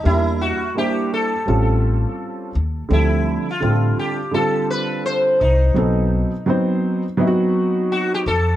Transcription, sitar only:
X:1
M:4/4
L:1/16
Q:"Swing 16ths" 1/4=84
K:Ddor
V:1 name="Sitar"
E2 ^F2 G2 A4 z6 | E3 F3 G2 A2 B2 c2 _E2- | _E2 z8 z2 ^F G A2 |]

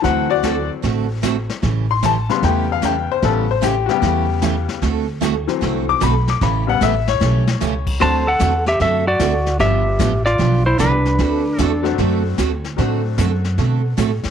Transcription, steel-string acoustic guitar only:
X:1
M:4/4
L:1/8
Q:"Swing" 1/4=151
K:Dmix
V:1 name="Steel-string acoustic guitar"
[D,A,CFA] z [D,A,CFA] z [D,A,CFA] z [D,A,CFA] z | [^C,E,A,^CG] z [C,E,A,CG] z [C,E,A,CG] z [C,E,A,CG] z | [^C,E,A,^CG] z [C,E,A,CG] z [C,E,A,CG] z [C,E,A,CG] z | [D,A,CFA] z [D,A,CFA] z [D,A,CFA] z [D,A,CFA] z |
[^C,E,A,^CG] z [C,E,A,CG] z [C,E,A,CG] z [C,E,A,CG] z | [D,A,CFA] z [D,A,CFA] z [D,A,CFA] z [D,A,CFA] z | [D,=F,B,DG] z [D,F,B,DG] z [D,F,B,DG] z [D,F,B,DG] z | [D,A,CFA] z [D,A,CFA] z [D,A,CFA] z [D,A,CFA] z |
[D,A,CFA] z [D,A,CFA] z [D,A,CFA] z [D,A,CFA] z |]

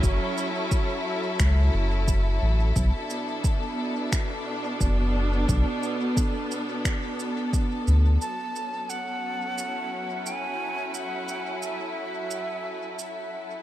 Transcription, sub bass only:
X:1
M:4/4
L:1/8
Q:1/4=88
K:F#m
V:1 name="Sub bass" clef=bass
F,,, z3 C,, F,,,2 A,,, | B,,, z4 z F,,,2 | B,,, z6 D,, | z8 |
z8 |]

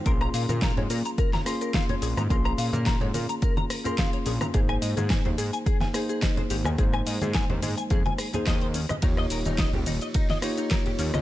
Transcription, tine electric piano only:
X:1
M:4/4
L:1/16
Q:"Swing 16ths" 1/4=107
K:Bbdor
V:1 name="Tine electric piano"
[B,DFAc']8- [B,DFAc']2 [B,DFAc']6 | [B,DFAc']8- [B,DFAc']3 [B,DFAc']4- [B,DFAc'] | [B,EAc]8- [B,EAc]2 [B,EAc]6 | [A,B,Ec]8- [A,B,Ec]3 [B,EAc]3 z2 |
[B,EFGd]8- [B,EFGd]2 [B,EFGd]6 |]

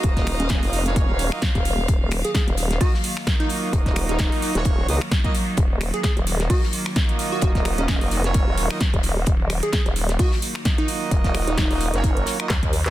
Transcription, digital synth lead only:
X:1
M:4/4
L:1/16
Q:"Swing 16ths" 1/4=130
K:Ebm
V:1 name="Digital synth lead"
G z2 D D z8 z3 | z3 A A z3 G z4 E z2 | z3 E6 z6 z | z3 A A z3 G z6 G |
G z2 D D z8 z3 | z3 A z4 G z4 E z2 | z3 E6 z6 z |]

